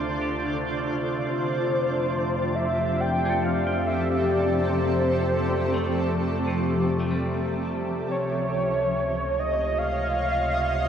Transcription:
0.00 1.27 D2 medium
0.00 10.88 C3 medium
0.00 1.32 D3 medium
0.00 1.28 G3 soft
0.00 10.88 A3 medium
0.00 0.15 C4 medium
0.00 4.02 D4 medium
0.00 2.86 F4 medium
0.00 3.61 C5 medium
0.00 8.08 D5 medium
0.21 2.58 G4 soft
1.29 8.03 F2 medium
1.29 8.07 F3 medium
1.29 2.56 C5 loud
1.59 8.07 C4 medium
2.19 8.06 G4 medium
2.55 3.02 E5 loud
2.90 8.07 A4 medium
3.00 3.45 G5 loud
3.25 5.63 A4 medium
3.44 3.88 F5 loud
3.67 6.04 G5 soft
3.87 4.31 E5 medium
4.29 4.70 D5 medium
4.69 6.38 C5 medium
5.74 6.99 A3 medium
6.47 7.27 F3 soft
7.00 9.37 A3 medium
7.11 9.48 G3 soft
8.08 10.88 C#2 medium
8.08 9.41 C#5 medium
8.33 10.88 C#5 medium
8.55 10.88 D#5 medium
8.81 10.88 F4 medium
9.39 9.80 D#5 medium
9.78 10.88 F5 loud

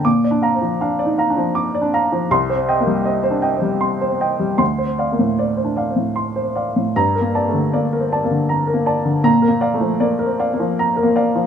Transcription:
0.05 2.26 A#2 soft
0.05 0.35 D6 medium
0.24 0.54 D5 soft
0.31 0.71 D4 soft
0.42 0.60 F5 soft
0.42 0.60 A#5 soft
0.55 0.80 C4 soft
0.62 0.92 F3 soft
0.81 1.21 D4 soft
0.81 1.11 F5 soft
0.99 1.29 D5 soft
1.05 1.30 D#4 soft
1.18 1.35 F5 soft
1.18 1.35 A#5 soft
1.30 1.70 D4 soft
1.37 1.66 F3 soft
1.55 1.85 D6 soft
1.75 2.04 D5 soft
1.82 2.21 D4 soft
1.93 2.10 F5 soft
1.93 2.10 A#5 soft
2.12 2.31 F3 soft
2.31 4.57 C2 medium
2.31 2.61 C6 medium
2.50 2.79 C5 soft
2.55 2.96 C4 soft
2.68 2.85 D#5 soft
2.68 2.85 G5 soft
2.80 3.06 A#3 soft
2.87 3.17 G3 soft
3.05 3.47 C4 soft
3.05 3.36 D#5 soft
3.23 3.55 C5 soft
3.31 3.57 D4 soft
3.42 3.61 D#5 soft
3.42 3.60 G5 soft
3.56 3.98 C4 soft
3.61 3.94 G3 soft
3.81 4.13 C6 soft
4.01 4.33 C5 soft
4.08 4.49 C4 soft
4.21 4.38 D#5 soft
4.21 4.39 G5 soft
4.39 4.60 G3 soft
4.58 6.90 D2 soft
4.58 4.90 C6 medium
4.78 5.10 C5 soft
4.86 5.27 C4 soft
4.98 5.16 D5 soft
4.98 5.17 F5 soft
5.12 5.38 A#3 soft
5.19 5.50 A2 soft
5.38 5.80 C4 soft
5.38 5.70 D5 soft
5.57 5.89 C5 soft
5.64 5.90 D4 soft
5.76 5.94 D5 soft
5.76 5.95 F5 soft
5.90 6.32 C4 soft
5.96 6.28 A2 soft
6.16 6.47 C6 soft
6.36 6.67 C5 soft
6.42 6.85 C4 soft
6.56 6.73 D5 soft
6.56 6.74 F5 soft
6.76 6.96 A2 soft
6.96 9.21 G2 soft
6.96 7.27 A#5 medium
7.15 7.46 A#4 soft
7.21 7.63 A#3 soft
7.35 7.52 D5 soft
7.35 7.52 A5 soft
7.48 7.74 A3 soft
7.54 7.85 D3 soft
7.74 8.14 A#3 soft
7.74 8.04 D5 soft
7.93 8.23 A#4 soft
8.00 8.25 C4 soft
8.12 8.29 D5 soft
8.12 8.29 A5 soft
8.24 8.65 A#3 soft
8.31 8.61 D3 soft
8.49 8.79 A#5 soft
8.67 8.98 A#4 soft
8.74 9.15 A#3 soft
8.86 9.04 D5 soft
8.86 9.04 A5 soft
9.05 9.25 D3 soft
9.24 11.47 A#2 medium
9.24 9.55 A#5 medium
9.42 9.74 A#4 soft
9.48 9.90 A#3 soft
9.61 9.79 D5 soft
9.61 9.79 F5 soft
9.74 10.01 A3 soft
9.81 10.12 F3 soft
10.00 10.42 A#3 soft
10.00 10.32 D5 soft
10.19 10.51 A#4 medium
10.26 10.52 C4 soft
10.39 10.57 D5 soft
10.39 10.57 F5 soft
10.54 10.94 A#3 soft
10.60 10.90 F3 soft
10.79 11.09 A#5 medium
10.97 11.27 A#4 soft
11.03 11.43 A#3 soft
11.16 11.33 D5 soft
11.16 11.33 F5 soft
11.35 11.47 F3 soft

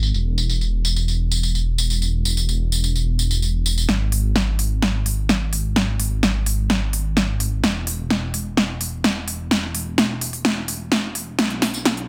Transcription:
0.00 0.11 G#1 medium
0.00 tambourine soft
0.14 3.86 E1 medium
0.14 tambourine soft
0.38 tambourine medium
0.49 tambourine soft
0.61 tambourine soft
0.85 tambourine medium
0.96 tambourine soft
1.08 tambourine soft
1.31 tambourine medium
1.43 tambourine soft
1.55 tambourine soft
1.78 tambourine medium
1.90 tambourine soft
2.02 tambourine soft
2.25 tambourine medium
2.37 tambourine soft
2.49 tambourine soft
2.72 tambourine medium
2.84 tambourine soft
2.96 tambourine soft
3.19 tambourine medium
3.31 tambourine soft
3.42 tambourine soft
3.66 tambourine medium
3.78 tambourine soft
3.89 7.61 G#1 medium
3.89 snare soft
4.12 open hi-hat medium
4.36 snare soft
4.59 open hi-hat medium
4.82 snare soft
5.06 open hi-hat loud
5.29 snare soft
5.53 open hi-hat loud
5.76 snare medium
6.00 open hi-hat loud
6.23 snare medium
6.46 open hi-hat loud
6.70 snare medium
6.93 open hi-hat loud
7.17 snare medium
7.40 open hi-hat loud
7.64 11.36 E1 medium
7.64 snare medium
7.87 open hi-hat loud
8.10 snare medium
8.34 open hi-hat loud
8.57 snare medium
8.81 open hi-hat loud
9.04 snare medium
9.28 open hi-hat loud
9.51 snare medium
9.75 open hi-hat loud
9.98 snare medium
10.21 open hi-hat loud
10.33 open hi-hat medium
10.45 snare medium
10.68 open hi-hat loud
10.92 snare medium
11.15 open hi-hat loud
11.39 12.08 B1 medium
11.39 snare medium
11.39 closed hi-hat medium
11.39 tambourine soft
11.50 closed hi-hat soft
11.62 snare medium
11.62 open hi-hat loud
11.62 tambourine medium
11.74 closed hi-hat soft
11.74 tambourine soft
11.85 snare medium
11.85 closed hi-hat medium
11.85 tambourine soft
11.97 closed hi-hat soft

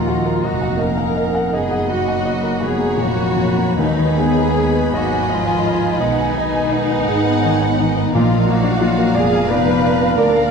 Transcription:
0.00 0.40 D#2 medium
0.00 0.41 D#2 medium
0.00 2.97 A#2 soft
0.00 3.75 A#2 soft
0.00 0.44 F3 medium
0.00 0.45 G#3 medium
0.00 2.78 A#3 soft
0.00 0.19 D#4 soft
0.00 3.75 D#4 medium
0.00 0.43 F4 medium
0.00 0.44 F5 medium
0.00 0.41 F#5 soft
0.00 3.75 F#5 soft
0.00 0.40 A#5 soft
0.08 0.37 F#4 medium
0.25 0.55 A#4 medium
0.43 1.54 F1 medium
0.43 1.54 F2 soft
0.43 0.79 F#3 medium
0.43 0.82 A#3 medium
0.43 0.81 F#4 medium
0.43 0.73 D#5 medium
0.43 1.54 F5 soft
0.43 0.80 F#5 medium
0.43 1.52 A#5 soft
0.61 0.91 F#5 soft
0.79 1.54 A#3 medium
0.79 1.57 C#4 medium
0.79 1.54 A#4 medium
0.79 1.09 D#5 soft
0.79 1.53 A#5 medium
0.97 1.27 F#5 soft
1.17 1.47 D#5 soft
1.35 1.65 F#5 medium
1.52 2.64 F#1 soft
1.52 2.64 F#2 medium
1.52 1.91 G#3 medium
1.52 1.93 B3 medium
1.52 1.91 G#4 medium
1.52 1.83 D#5 medium
1.52 2.60 D#5 medium
1.52 2.65 D#5 soft
1.52 1.90 G#5 medium
1.52 8.14 B5 medium
1.71 2.01 F#5 soft
1.88 2.62 F#3 medium
1.88 2.67 A#3 medium
1.88 2.62 F#4 medium
1.88 2.19 D#5 soft
1.88 2.63 F#5 medium
2.08 2.38 F#5 soft
2.25 2.55 D#5 soft
2.44 2.73 A#4 soft
2.60 3.77 F1 medium
2.60 3.77 F2 medium
2.60 3.00 G#3 medium
2.60 2.91 F#4 medium
2.60 3.79 C#5 medium
2.60 6.00 C#5 soft
2.60 2.99 G#5 medium
2.64 3.00 B3 medium
2.64 3.00 G#4 medium
2.78 3.09 A#3 soft
2.97 3.29 A#2 soft
2.97 3.78 F#3 medium
2.97 3.77 A#3 medium
2.97 3.79 F#4 medium
2.97 3.79 F#5 medium
3.14 3.48 A#3 soft
3.36 3.70 A#2 soft
3.57 3.78 A#3 soft
3.77 8.09 D#2 medium
3.77 4.91 D#2 medium
3.77 4.92 D#2 medium
3.77 8.09 B2 soft
3.77 4.90 D#3 medium
3.77 4.18 D#3 medium
3.77 4.19 G#3 medium
3.77 9.10 D#4 medium
3.77 4.18 D#4 medium
3.77 4.91 B4 medium
3.77 4.18 D#5 medium
3.77 7.96 G#5 soft
3.98 4.30 D#3 soft
4.17 4.94 G#3 medium
4.17 4.95 B3 medium
4.17 4.50 B3 medium
4.17 4.94 G#4 medium
4.17 4.93 G#5 medium
4.38 4.68 D#4 soft
4.58 4.87 G#4 medium
4.75 5.05 B4 medium
4.93 5.98 G#1 medium
4.93 5.98 G#2 medium
4.93 5.30 F#3 medium
4.93 5.30 A#3 medium
4.93 5.29 F#4 medium
4.93 5.23 D#5 medium
4.93 6.01 D#5 medium
4.93 5.29 F#5 medium
5.12 5.40 G#5 soft
5.28 6.01 F3 medium
5.28 5.99 G#3 medium
5.28 6.01 F4 medium
5.28 5.58 D#5 medium
5.28 6.00 F5 medium
5.47 5.75 G#5 medium
5.66 5.94 D#5 soft
5.82 6.11 G#5 medium
5.99 7.05 B1 medium
5.99 7.05 B2 medium
5.99 7.96 D#3 medium
5.99 7.82 G#3 medium
5.99 8.13 D#4 medium
5.99 7.06 B4 medium
5.99 7.85 D#5 medium
5.99 6.29 D#5 medium
5.99 6.36 F#5 medium
6.21 6.48 G#5 medium
6.36 6.65 D#5 medium
6.36 6.72 G#5 medium
6.55 6.83 G#5 medium
6.71 7.01 D#5 medium
6.71 8.13 F#5 medium
6.90 7.18 B4 medium
7.07 8.11 G#1 medium
7.07 8.11 G#2 medium
7.07 7.36 G#4 medium
7.07 7.43 B4 medium
7.26 7.54 B3 medium
7.43 7.72 D#3 medium
7.43 7.79 C#5 medium
7.62 7.90 B3 soft
7.78 8.07 D#3 soft
7.78 8.13 D#5 medium
7.97 8.14 B3 soft
8.12 9.13 A#1 medium
8.12 9.13 A#2 medium
8.12 10.51 A#2 medium
8.12 8.46 F3 medium
8.12 8.44 A#3 medium
8.12 8.48 F4 medium
8.12 9.13 D5 medium
8.12 8.46 F5 medium
8.12 10.51 F5 medium
8.12 10.14 F5 medium
8.12 10.13 A#5 medium
8.31 8.58 F3 medium
8.47 9.15 F#3 medium
8.47 8.74 A#3 medium
8.47 9.16 A#3 medium
8.47 9.14 F#4 medium
8.47 9.16 F#5 medium
8.64 8.91 D4 medium
8.81 9.08 F4 medium
8.98 9.25 A#4 medium
9.14 10.16 F1 medium
9.14 10.15 F2 medium
9.14 9.49 G#3 medium
9.14 9.48 B3 medium
9.14 10.51 D4 medium
9.14 9.49 G#4 medium
9.14 9.42 D5 medium
9.14 10.16 F5 medium
9.14 9.49 G#5 medium
9.33 9.60 F5 medium
9.48 10.18 B3 medium
9.48 10.18 D#4 medium
9.48 10.17 B4 medium
9.48 9.77 D5 medium
9.48 10.17 B5 medium
9.67 9.94 F5 medium
9.85 10.11 D5 medium
10.01 10.28 F5 medium
10.16 10.51 D2 medium
10.16 10.51 A#3 medium
10.16 10.51 D4 medium
10.16 10.51 A#4 medium
10.16 10.45 D5 medium
10.16 10.51 D5 medium
10.16 10.51 F5 medium
10.16 10.51 A#5 medium
10.36 10.51 F5 medium

